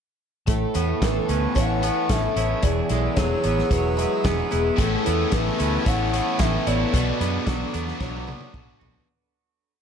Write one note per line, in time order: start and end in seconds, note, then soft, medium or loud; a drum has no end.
0.47 0.64 A1 medium
0.47 1.83 A2 medium
0.47 1.83 A3 medium
0.47 0.74 A4 medium
0.47 1.05 A4 medium
0.47 2.62 B4 medium
0.47 2.62 A5 medium
0.47 2.61 C#6 medium
0.47 kick loud
0.47 closed hi-hat medium
0.74 0.92 E2 medium
0.74 1.83 B3 medium
0.74 1.56 E4 medium
0.74 1.05 B4 medium
0.74 closed hi-hat medium
1.02 1.18 A1 medium
1.02 1.57 E3 medium
1.02 1.29 A4 medium
1.02 2.08 A4 medium
1.02 1.58 B4 loud
1.02 kick loud
1.02 snare loud
1.02 closed hi-hat medium
1.29 1.46 D2 medium
1.29 2.36 B3 medium
1.29 2.08 C#4 medium
1.29 1.55 B4 medium
1.29 closed hi-hat medium
1.55 1.89 A1 medium
1.55 3.16 E3 medium
1.55 2.90 E4 medium
1.55 1.82 C#5 medium
1.55 2.12 F#5 loud
1.55 kick loud
1.55 closed hi-hat medium
1.82 2.91 B3 medium
1.82 2.13 B4 medium
1.82 2.63 C#5 medium
1.82 closed hi-hat medium
2.09 2.26 A1 medium
2.09 2.64 C#4 medium
2.09 2.63 A4 medium
2.09 2.37 A4 medium
2.09 2.63 E5 loud
2.09 kick loud
2.09 snare loud
2.09 closed hi-hat loud
2.36 2.53 A1 medium
2.36 3.44 B3 medium
2.36 3.20 E4 medium
2.36 2.64 C#5 medium
2.36 closed hi-hat medium
2.63 2.79 E1 medium
2.63 3.98 E2 medium
2.63 3.98 E3 medium
2.63 2.90 G#4 medium
2.63 4.78 G#4 medium
2.63 3.17 D5 loud
2.63 4.78 F#5 medium
2.63 4.78 E6 medium
2.63 kick loud
2.63 closed hi-hat medium
2.89 3.07 B1 medium
2.89 3.97 G#3 medium
2.89 3.70 E4 medium
2.89 3.17 A4 medium
2.89 closed hi-hat medium
3.15 3.34 E1 medium
3.15 3.70 F#3 medium
3.15 3.44 G#4 medium
3.15 4.24 G#4 medium
3.15 3.72 C#5 loud
3.15 kick loud
3.15 snare loud
3.15 closed hi-hat medium
3.44 3.61 A1 medium
3.44 4.24 B3 medium
3.44 4.51 B3 medium
3.44 3.71 B4 medium
3.44 closed hi-hat medium
3.59 snare soft
3.70 4.04 E1 medium
3.70 4.79 F#3 medium
3.70 4.79 E4 medium
3.70 4.27 B4 loud
3.70 3.96 C#5 medium
3.70 kick loud
3.70 closed hi-hat medium
3.97 4.79 G#3 medium
3.97 4.51 B4 medium
3.97 4.79 E5 medium
3.97 closed hi-hat medium
4.24 4.42 E1 medium
4.24 4.82 B3 medium
4.24 4.50 G#4 medium
4.24 4.79 G#4 medium
4.24 4.66 G#4 loud
4.24 kick loud
4.24 snare loud
4.24 closed hi-hat medium
4.51 4.69 E1 medium
4.51 4.81 B3 medium
4.51 4.79 E4 medium
4.51 4.78 B4 medium
4.51 closed hi-hat medium
4.76 4.95 A1 medium
4.76 6.91 A2 medium
4.76 6.13 A2 medium
4.76 6.91 E3 medium
4.76 6.13 A3 medium
4.76 6.92 A3 medium
4.76 6.92 C#4 loud
4.76 6.93 E4 loud
4.76 5.06 A4 medium
4.76 5.35 A4 loud
4.76 6.92 C#6 medium
4.76 kick loud
4.76 closed hi-hat medium
4.80 9.05 B4 medium
4.80 6.92 A5 medium
5.05 5.23 E2 medium
5.05 6.11 B3 medium
5.05 5.84 E4 medium
5.05 5.36 B4 medium
5.05 closed hi-hat medium
5.31 5.49 A1 medium
5.31 5.85 E3 medium
5.31 6.39 A4 medium
5.31 5.60 A4 medium
5.31 5.87 B4 loud
5.31 kick loud
5.31 snare loud
5.31 closed hi-hat medium
5.57 5.77 D2 medium
5.57 6.67 B3 medium
5.57 6.38 C#4 medium
5.57 5.86 B4 medium
5.57 closed hi-hat medium
5.85 6.19 A1 medium
5.85 6.94 E3 medium
5.85 6.93 E4 medium
5.85 6.13 C#5 medium
5.85 6.42 F#5 loud
5.85 kick loud
5.85 closed hi-hat medium
6.12 7.20 B3 medium
6.12 6.44 B4 medium
6.12 6.94 C#5 medium
6.12 closed hi-hat medium
6.39 6.56 A1 medium
6.39 6.93 C#4 medium
6.39 6.94 A4 medium
6.39 6.67 A4 medium
6.39 6.68 E5 loud
6.39 kick loud
6.39 snare loud
6.39 closed hi-hat medium
6.66 6.83 A1 medium
6.66 7.75 B3 medium
6.66 6.94 E4 medium
6.66 6.93 C#5 medium
6.66 8.54 D5 loud
6.66 closed hi-hat medium
6.92 7.10 B1 medium
6.92 9.05 B2 loud
6.92 8.28 B2 medium
6.92 9.06 F#3 loud
6.92 9.07 B3 loud
6.92 9.07 D4 loud
6.92 7.20 A4 medium
6.92 9.07 F#5 medium
6.92 9.06 D6 medium
6.92 kick loud
6.92 closed hi-hat loud
7.21 7.37 F#2 medium
7.21 8.26 B3 medium
7.21 7.98 D4 medium
7.21 7.47 B4 medium
7.21 closed hi-hat medium
7.46 7.64 B1 medium
7.46 7.99 F#3 medium
7.46 8.53 F#4 medium
7.46 7.74 A4 medium
7.46 kick loud
7.46 snare loud
7.46 closed hi-hat medium
7.73 7.91 E2 medium
7.73 8.81 B3 medium
7.73 8.52 D4 medium
7.73 8.00 B4 medium
7.73 closed hi-hat medium
7.88 snare soft
8.00 8.33 B1 medium
8.00 9.08 F#3 medium
8.00 9.07 D4 medium
8.00 8.27 C#5 medium
8.00 kick loud
8.00 snare medium
8.27 9.08 B3 medium
8.27 8.54 B4 medium
8.27 9.08 D5 medium
8.27 high tom medium
8.41 high tom medium
8.53 8.71 B1 medium
8.53 9.07 D4 medium
8.53 9.08 F#4 medium
8.53 8.81 A4 medium
8.53 kick loud
8.53 mid tom medium
8.79 8.98 B1 medium
8.79 9.08 B3 medium
8.79 9.07 F#4 medium
8.79 9.08 B4 medium
8.79 floor tom medium
8.94 floor tom medium